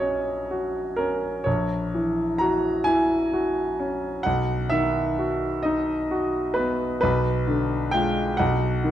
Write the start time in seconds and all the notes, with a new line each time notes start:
Already playing: A#1 F#3 F#4 D#5 E5
0.00 C#4 C#5
0.51 F#4
0.96 C#4 A#4
1.44 A#1 C#5
1.94 E3
2.38 F#4 A#5
2.84 E4 G#5
3.33 F#4
3.79 C#4
4.23 B1 F#5
4.69 D#3 E5
5.19 F#4
5.63 D#4 D#5
6.11 F#4
6.54 B3 B4
7.01 B1 B4
7.47 D3
7.91 G#3 F4 G5
8.37 B1 F#5
8.84 D#3